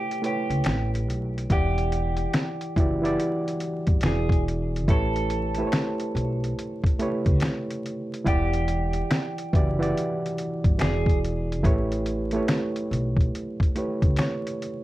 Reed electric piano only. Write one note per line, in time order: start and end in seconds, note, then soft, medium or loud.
0.00 0.22 A3 medium
0.00 0.23 E4 medium
0.00 0.24 G4 medium
0.00 0.25 B4 medium
0.00 0.25 C#5 loud
0.22 1.03 A3 medium
0.22 1.03 E4 medium
0.22 1.04 G4 medium
0.22 1.04 B4 medium
0.22 1.05 C#5 medium
1.50 2.30 E3 loud
1.50 2.31 E4 medium
1.50 2.32 G4 medium
1.50 2.32 D5 loud
1.50 2.31 F#5 medium
2.77 2.93 E3 medium
2.77 2.94 E4 medium
2.77 2.94 F#4 medium
2.77 2.95 G4 medium
2.77 2.95 D5 medium
3.02 4.03 E3 medium
3.02 4.03 E4 medium
3.02 4.04 G4 medium
3.02 4.04 D5 loud
3.02 4.04 F#5 medium
4.05 4.76 E3 medium
4.05 4.76 E4 medium
4.05 4.77 F#4 medium
4.05 4.77 G#4 medium
4.05 4.78 D5 medium
4.88 5.28 A3 medium
4.88 5.28 E4 medium
4.88 5.29 G4 medium
4.88 5.29 B4 medium
4.88 5.30 C#5 loud
5.58 6.47 A3 medium
5.58 6.47 E4 medium
5.58 6.48 G4 medium
5.58 6.48 B4 medium
5.58 5.64 C5 medium
5.67 6.52 C#5 medium
6.99 7.80 A3 medium
6.99 7.80 E4 medium
6.99 7.80 G4 medium
6.99 7.81 B4 medium
6.99 7.81 C#5 loud
8.24 9.06 E3 medium
8.24 9.06 E4 loud
8.24 9.07 G4 medium
8.24 9.07 D5 loud
8.24 9.06 F#5 medium
9.53 9.70 E3 medium
9.53 9.70 E4 medium
9.53 9.70 F#4 medium
9.53 9.71 G4 medium
9.53 9.71 D5 loud
9.79 10.77 E3 medium
9.79 10.79 E4 medium
9.79 10.80 G4 medium
9.79 10.81 D5 loud
9.79 10.80 F#5 medium
10.78 11.51 E3 medium
10.78 11.52 E4 medium
10.78 11.52 F#4 medium
10.78 11.52 G#4 medium
10.78 11.53 D5 medium
11.63 12.04 A3 medium
11.63 12.04 E4 medium
11.63 12.05 G4 medium
11.63 12.05 B4 medium
11.63 12.05 C#5 loud
12.33 13.23 A3 medium
12.33 13.24 E4 medium
12.33 13.24 G4 medium
12.33 13.24 B4 medium
12.33 13.25 C#5 medium
13.76 14.56 A3 medium
13.76 14.56 E4 medium
13.76 14.57 G4 medium
13.76 14.57 B4 medium
13.76 14.18 C#5 medium
14.19 14.84 C#5 medium